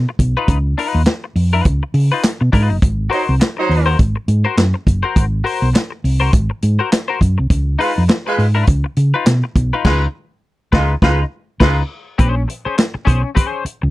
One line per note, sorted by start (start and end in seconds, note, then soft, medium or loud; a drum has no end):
0.09 muted clean electric guitar stroke medium
0.19 0.34 B1 medium
0.19 kick medium
0.19 closed hi-hat medium
0.37 0.58 D#4 medium
0.37 0.57 F4 medium
0.37 0.57 B4 medium
0.48 0.73 C#2 loud
0.48 kick loud
0.48 closed hi-hat medium
0.78 1.01 D#4 medium
0.78 1.01 F4 medium
0.78 1.02 B4 medium
0.78 open hi-hat medium
0.94 1.05 D#2 medium
1.05 muted clean electric guitar stroke soft
1.05 snare loud
1.05 clap medium
1.05 closed hi-hat medium
1.24 muted clean electric guitar stroke soft
1.36 1.61 F2 medium
1.36 open hi-hat medium
1.53 1.64 D#4 medium
1.53 1.65 F4 medium
1.53 1.65 B4 medium
1.65 1.80 C#2 medium
1.65 muted clean electric guitar stroke soft
1.65 kick loud
1.65 closed hi-hat medium
1.83 muted clean electric guitar stroke medium
1.94 2.09 C#3 loud
1.94 open hi-hat medium
2.12 2.22 D#4 medium
2.12 2.23 F4 medium
2.12 2.24 B4 medium
2.24 snare medium
2.24 clap medium
2.24 closed hi-hat medium
2.41 2.51 B2 medium
2.41 muted clean electric guitar stroke soft
2.52 2.68 G#2 loud
2.52 2.76 D#4 medium
2.52 2.70 F4 medium
2.52 2.69 B4 medium
2.52 kick medium
2.52 open hi-hat medium
2.70 2.80 F#1 medium
2.70 muted clean electric guitar stroke medium
2.82 3.07 G#1 loud
2.82 kick loud
2.82 closed hi-hat medium
3.10 3.23 F#3 medium
3.10 3.23 D#4 medium
3.10 3.34 F#4 medium
3.10 3.34 A#4 medium
3.10 3.34 C5 medium
3.10 3.22 C5 medium
3.10 open hi-hat medium
3.29 3.39 C2 medium
3.40 muted clean electric guitar stroke soft
3.40 snare medium
3.40 clap medium
3.40 closed hi-hat medium
3.57 3.93 F#3 loud
3.57 3.93 D#4 loud
3.57 3.93 C5 loud
3.57 muted clean electric guitar stroke soft
3.69 3.95 D#2 medium
3.69 open hi-hat medium
3.86 3.97 F#4 medium
3.86 3.98 A#4 medium
3.86 3.99 C5 medium
3.98 4.14 G#1 medium
3.98 muted clean electric guitar stroke soft
3.98 kick loud
3.98 closed hi-hat medium
4.16 muted clean electric guitar stroke soft
4.28 4.43 G#2 loud
4.28 closed hi-hat medium
4.45 4.56 F#4 medium
4.45 4.56 A#4 medium
4.45 4.57 C5 medium
4.57 4.72 F#2 medium
4.57 muted clean electric guitar stroke soft
4.57 snare medium
4.57 clap medium
4.57 closed hi-hat medium
4.74 muted clean electric guitar stroke medium
4.87 5.02 F#1 medium
4.87 kick medium
4.87 closed hi-hat medium
5.03 5.25 F#4 medium
5.03 5.24 A#4 medium
5.03 5.24 C5 medium
5.16 5.41 G#1 loud
5.16 kick loud
5.16 closed hi-hat medium
5.44 5.68 F#4 medium
5.44 5.68 A#4 medium
5.44 5.69 C5 medium
5.44 open hi-hat medium
5.62 5.72 B1 medium
5.73 muted clean electric guitar stroke soft
5.73 snare medium
5.73 clap medium
5.73 closed hi-hat medium
5.91 muted clean electric guitar stroke soft
6.04 6.29 C2 medium
6.04 open hi-hat medium
6.20 6.31 F#4 medium
6.20 6.32 A#4 medium
6.20 6.32 C5 medium
6.33 6.48 G#1 medium
6.33 kick loud
6.33 closed hi-hat medium
6.50 muted clean electric guitar stroke soft
6.62 6.78 G#2 medium
6.62 closed hi-hat medium
6.79 6.90 F#4 medium
6.79 6.90 A#4 medium
6.79 6.91 C5 medium
6.91 muted clean electric guitar stroke soft
6.91 snare medium
6.91 clap medium
6.91 closed hi-hat medium
7.08 7.19 F#4 medium
7.08 7.20 A#4 medium
7.08 7.20 C5 medium
7.21 7.36 F#2 medium
7.21 kick medium
7.21 closed hi-hat medium
7.38 7.49 C2 medium
7.38 muted clean electric guitar stroke soft
7.50 7.75 C#2 loud
7.50 kick loud
7.50 closed hi-hat medium
7.79 7.91 G#3 medium
7.79 8.02 D#4 medium
7.79 8.03 F4 medium
7.79 7.91 F4 medium
7.79 7.91 B4 medium
7.79 8.03 B4 medium
7.79 open hi-hat medium
7.98 8.08 F2 medium
8.08 muted clean electric guitar stroke soft
8.08 snare loud
8.08 clap medium
8.08 closed hi-hat medium
8.26 8.45 G#3 loud
8.26 8.45 F4 medium
8.26 8.45 B4 loud
8.26 muted clean electric guitar stroke soft
8.38 8.63 G#2 medium
8.38 open hi-hat medium
8.55 8.65 D#4 medium
8.55 8.67 F4 medium
8.55 8.66 B4 medium
8.67 8.83 C#2 medium
8.67 kick loud
8.67 closed hi-hat medium
8.84 muted clean electric guitar stroke soft
8.96 9.12 C#3 medium
8.96 closed hi-hat medium
9.14 9.25 D#4 medium
9.14 9.25 F4 medium
9.14 9.26 B4 medium
9.26 9.41 B2 medium
9.26 muted clean electric guitar stroke soft
9.26 snare loud
9.26 clap medium
9.26 closed hi-hat medium
9.44 muted clean electric guitar stroke soft
9.56 9.71 B1 loud
9.56 kick medium
9.56 closed hi-hat medium
9.73 9.86 D#4 medium
9.73 9.85 F4 medium
9.73 9.84 B4 medium
9.85 10.05 C#2 loud
9.85 10.01 G#3 loud
9.85 10.07 D#4 loud
9.85 10.01 F4 loud
9.85 10.06 F4 loud
9.85 10.00 B4 loud
9.85 10.06 B4 loud
9.85 kick loud
9.85 snare loud
9.85 crash medium
10.72 10.94 C#2 medium
10.72 10.90 G#3 medium
10.72 10.94 D#4 medium
10.72 10.94 F4 loud
10.72 10.90 F4 medium
10.72 10.93 B4 medium
10.72 10.90 B4 medium
10.72 kick loud
10.72 snare loud
11.02 11.23 C#2 medium
11.02 11.18 G#3 medium
11.02 11.24 D#4 loud
11.02 11.18 F4 loud
11.02 11.24 F4 loud
11.02 11.18 B4 loud
11.02 11.23 B4 loud
11.02 kick loud
11.02 snare loud
11.60 11.81 C#2 medium
11.60 11.77 G#3 medium
11.60 11.82 D#4 loud
11.60 11.77 F4 medium
11.60 11.82 F4 loud
11.60 11.81 B4 loud
11.60 11.76 B4 medium
11.60 kick loud
11.60 snare loud
11.60 crash medium
12.18 12.45 A#1 loud
12.18 12.42 C#4 medium
12.18 12.36 G#4 medium
12.18 12.35 C5 loud
12.18 kick loud
12.18 closed hi-hat medium
12.36 muted clean electric guitar stroke soft
12.48 muted clean electric guitar stroke soft
12.48 closed hi-hat medium
12.65 12.75 C#4 soft
12.65 12.76 G#4 soft
12.65 12.76 C5 soft
12.65 muted fingered electric bass stroke soft
12.77 muted clean electric guitar stroke soft
12.77 snare loud
12.77 clap medium
12.77 closed hi-hat medium
12.94 muted clean electric guitar stroke soft
12.94 muted fingered electric bass stroke soft
13.05 13.22 B1 medium
13.05 13.29 C#4 medium
13.05 13.23 G#4 medium
13.05 13.22 C5 medium
13.05 kick medium
13.05 closed hi-hat medium
13.23 muted clean electric guitar stroke soft
13.35 13.47 C4 medium
13.35 13.47 G4 medium
13.35 13.48 B4 loud
13.35 kick medium
13.35 closed hi-hat medium
13.47 13.63 C#4 medium
13.47 13.63 G#4 medium
13.47 13.64 C5 loud
13.65 muted fingered electric bass stroke soft
13.65 muted clean electric guitar stroke soft
13.65 closed hi-hat medium
13.82 13.90 C#2 medium
13.82 muted clean electric guitar stroke soft